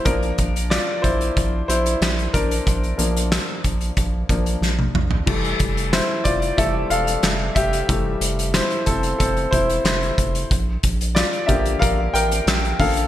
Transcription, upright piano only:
<<
  \new Staff \with { instrumentName = "Upright piano" } { \time 4/4 \key f \major \tempo 4 = 92 <d' bes'>4 <f' d''>8 <e' c''>4 <e' c''>4 <d' bes'>8~ | <d' bes'>2. r4 | r4 <e' c''>8 <f' d''>8 <a' e''>8 <a' f''>4 <g' e''>8~ | <g' e''>4 <e' c''>8 <c' a'>8 <c' a'>8 <e' c''>8 <e' c''>8. r16 |
r4 <f' d''>8 <g' e''>8 <bes' f''>8 <bes' g''>4 <a' f''>8 | }
  \new Staff \with { instrumentName = "Upright piano" } { \clef bass \time 4/4 \key f \major <f bes>4. r2 r8 | r8 <f bes d'>2 <f bes d'>8 r4 | <e g a>8 r4. <e g a>8 r4. | <e g a>4. r2 r8 |
r4. <d f bes>8 r4. <d f bes>8 | }
>>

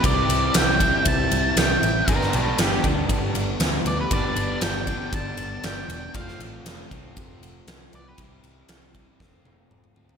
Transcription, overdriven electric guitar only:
\new Staff \with { instrumentName = "Overdriven electric guitar" } { \time 4/4 \key g \mixolydian \tempo 4 = 118 <c g c' e'>4. <c g c' e'>2~ <c g c' e'>8 | <g, d g b d'>4. <g, d g b d'>2~ <g, d g b d'>8 | <g, d g b d'>4. <g, d g b d'>2~ <g, d g b d'>8 | <f a c' f'>4. <f a c' f'>2~ <f a c' f'>8 |
<c e g c' e'>4. <c e g c' e'>8 <f a c' f'>4. <f a c' f'>8 | }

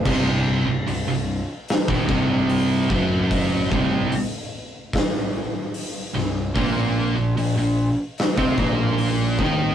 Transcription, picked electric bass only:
\new Staff \with { instrumentName = "Picked electric bass" } { \clef bass \time 4/4 \key c \minor \tempo 4 = 74 c,,8. c,,16 c,,16 c,,8 r8 ees,,16 c,,4 fis,,8~ | fis,,8 c,,8 r2 r8 c,,8 | bes,,8. bes,,16 bes,,16 bes,,8 r8 c,16 bes,,4 ees,8 | }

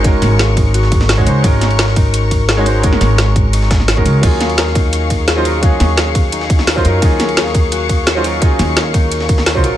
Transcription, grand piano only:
\new Staff \with { instrumentName = "Grand piano" } { \time 4/4 \key ees \minor \tempo 4 = 172 <aes des' ees' ges' bes'>2~ <aes des' ees' ges' bes'>8. r8 <aes des' ees' ges' des''>16 <aes des' ees' ges' c''>8 | <aes des' ees' ges' bes'>2~ <aes des' ees' ges' bes'>8. r8 <aes des' ees' ges' des''>16 <aes des' ees' ges' c''>8 | <aes des' ees' ges' bes'>2~ <aes des' ees' ges' bes'>8. r8 <aes des' ees' ges' bes'>8. | <ges des' ees' f' aes'>2~ <ges des' ees' f' aes'>8. r8 <ges des' ees' f' c''>16 <ges des' ees' f' bes'>8 |
<ges des' ees' aes' f''>2~ <ges des' ees' aes' f''>8. r8 <ges des' ees' f' c''>16 <ges des' ees' f' bes'>8 | <ges des' ees' f' aes'>2~ <ges des' ees' f' aes'>8. r8 <ges des' ees' f' c''>16 <ges des' ees' f' bes'>8 | <ges des' ees' f' aes'>2~ <ges des' ees' f' aes'>8. r8 <ges des' ees' f' c''>16 <ges des' ees' f' bes'>8 | }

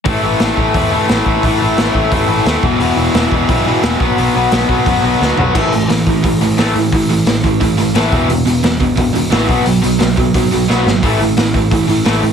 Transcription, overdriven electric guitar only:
\new Staff \with { instrumentName = "Overdriven electric guitar" } { \clef bass \time 4/4 \key b \dorian \tempo 4 = 175 <a, e a>8 <a, e a>8 <a, e a>8 <a, e a>8 <a, e a>8 <a, e a>8 <a, e a>8 <a, e a>8 | <a, e a>8 <a, e a>8 <a, e a>8 <a, e a>8 <a, e a>8 <a, e a>8 <a, e a>8 <e, b, e>8 | <e, b, e>8 <e, b, e>8 <e, b, e>8 <e, b, e>8 <e, b, e>8 <e, b, e>8 <e, b, e>8 <b, fis b>8 | <b, fis b>8 <b, fis b>8 <b, fis b>8 <b, fis b>8 <b, fis b>8 <b, fis b>8 <b, fis b>8 <b, fis b>8 |
<a, e a>8 <a, e>8 <a, e>8 <a, e>8 <a, e>8 <a, e>8 <a, e a>8 <a, e>8 | <a, e>8 <a, e>8 <a, e>8 <a, e>8 <a, e>8 <a, e>8 <a, e a>8 <e, b, e>8 | <e, b,>8 <e, b,>8 <e, b,>8 <e, b,>8 <e, b,>8 <e, b,>8 <e, b, e>8 <b, fis b>8 | <b, fis>8 <b, fis>8 <b, fis>8 <b, fis>8 <b, fis>8 <b, fis>8 <b, fis b>8 <b, fis>8 |
<a, e a>8 <a, e>8 <a, e>8 <a, e>8 <a, e>8 <a, e>8 <a, e a>8 <a, e>8 | }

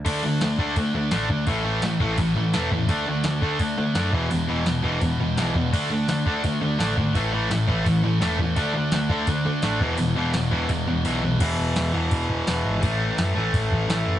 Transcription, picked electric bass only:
\new Staff \with { instrumentName = "Picked electric bass" } { \clef bass \time 4/4 \key d \lydian \tempo 4 = 169 d,8 d,8 d,8 d,8 d,8 d,8 a,,8 d,8 | a,,4 a,,8 a,,8 a,,8 a,,8 e,,8 e,8 | d,8 d,8 d,8 d,8 d,8 d,8 fis,8 e,,8 | e,,4 e,,8 e,,8 e,,8 e,,8 b,,8 e,8 |
d,8 d,8 d,8 d,8 d,8 d,8 a,,8 gis,,8 | a,,4 a,,8 a,,8 a,,8 a,,8 e,,8 e,8 | d,8 d,8 d,8 d,8 d,8 d,8 a,,8 e,,8 | e,,4 e,,8 e,,8 e,,8 e,,8 b,,8 b,,8 |
e,,8 e,,8 e,,8 e,8 e,,4 e,,8 gis,,8 | a,,4 fis,8 a,,8 a,,8 a,,8 a,,8 fis,,8 | }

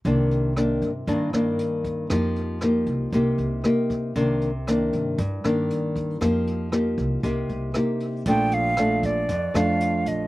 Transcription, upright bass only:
\new Staff \with { instrumentName = "Upright bass" } { \clef bass \time 4/4 \key bes \major \tempo 4 = 117 c,4. g,8 g,8 g,8 r4 | f,4. c,8 c,8 c,8 r4 | c,4. g,8 g,8 g,8 r4 | f,4. c,8 c,8 c,8 r4 |
bes,,2 f,8 f,4 bes,,8 | }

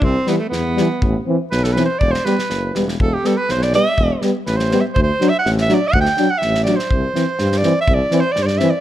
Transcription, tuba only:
\new Staff \with { instrumentName = "Tuba" } { \clef bass \time 2/4 \key e \minor \tempo 4 = 123 c,8 r8 e,4 | a,,8 r8 b,,4 | e,,8 r8 fis,,8 e,,8 | e,,8 r8 b,,4 |
e,,8 r8 a,,4 | d,8 r8 a,,4 | d,8 r8 a,,4 | c,8 r8 g,4 |
c,8 r8 g,4 | }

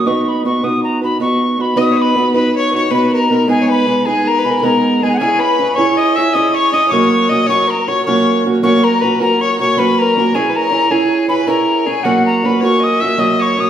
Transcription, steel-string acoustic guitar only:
\new Staff \with { instrumentName = "Steel-string acoustic guitar" } { \time 9/8 \key b \major \tempo 4. = 105 <b dis' fis' b'>4 <b dis' fis' b'>8 <b dis' fis' b'>4 <dis' fis' b'>8 <b dis' fis' b'>4 <b dis' fis' b'>8 | <b dis' fis' b'>4 <b dis' fis' b'>8 <b dis' fis' b'>4 <dis' fis' b'>8 <b dis' fis' b'>4 <b dis' fis' b'>8 | <gis b dis' gis'>4 <gis b dis' gis'>8 <gis b dis' gis'>4 <b dis' gis'>8 <gis b dis' gis'>4 <gis b dis' gis'>8 | <cis' e' gis' cis''>4 <cis' e' gis' cis''>8 <cis' e' gis' cis''>4 <e' gis' cis''>8 <cis' e' gis' cis''>4 <cis' e' gis' cis''>8 |
<fis ais cis' fis'>4 <fis ais cis' fis'>8 <fis ais cis' fis'>4 <ais cis' fis'>8 <fis ais cis' fis'>4 <fis ais cis' fis'>8 | <fis ais cis' fis'>4 <fis ais cis' fis'>8 <fis ais cis' fis'>4 <ais cis' fis'>8 <fis ais cis' fis'>4 <fis ais cis' fis'>8 | <cis' e' gis' cis''>4 <cis' e' gis' cis''>8 <cis' e' gis' cis''>4 <e' gis' cis''>8 <cis' e' gis' cis''>4 <cis' e' gis' cis''>8 | <fis ais cis' fis'>4 <fis ais cis' fis'>8 <fis ais cis' fis'>4 <ais cis' fis'>8 <fis ais cis' fis'>4 <fis ais cis' fis'>8 | }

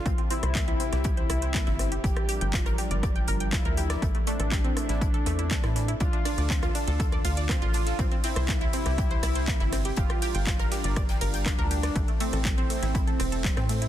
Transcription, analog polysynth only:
\new Staff \with { instrumentName = "Analog polysynth" } { \time 4/4 \key g \dorian \tempo 4 = 121 f'8 e'2.~ e'8 | g'4. r4. e'4~ | e'8 d'2.~ d'8 | f'4. r4. f'4~ |
f'8 e'2.~ e'8 | f'4. r4. d'4~ | d'8 c'2.~ c'8 | }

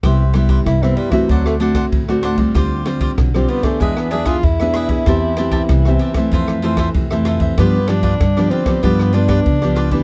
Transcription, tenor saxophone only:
\new Staff \with { instrumentName = "Tenor saxophone" } { \time 4/4 \key c \major \tempo 4 = 95 r4 e'16 c'16 g16 e16 fis16 a16 r4. | r4 r16 c'16 b16 a16 gis16 b16 d'16 f'16 e'4~ | e'2 r2 | b8 d'4 c'8 b8 d'4. | }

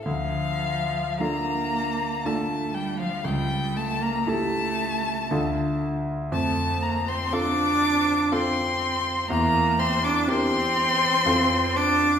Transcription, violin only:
\new Staff \with { instrumentName = "Violin" } { \time 3/4 \key d \minor \tempo 4 = 60 f''4 bes''4 a''8 g''16 f''16 | g''8 a''16 bes''16 a''4. r8 | a''8 bes''16 c'''16 d'''4 c'''4 | bes''8 c'''16 d'''16 c'''4. d'''8 | }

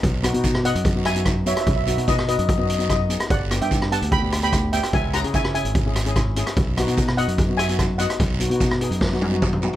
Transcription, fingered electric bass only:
\new Staff \with { instrumentName = "Fingered electric bass" } { \clef bass \time 4/4 \key b \major \tempo 4 = 147 b,,8. b,4 fis,2 r16 | b,,8. b,4 fis,2 r16 | g,,8. g,4 d,2 r16 | cis,8. cis4 gis,,2 r16 |
b,,8. b,4 fis,2 r16 | b,,8. b,4 fis,2 r16 | }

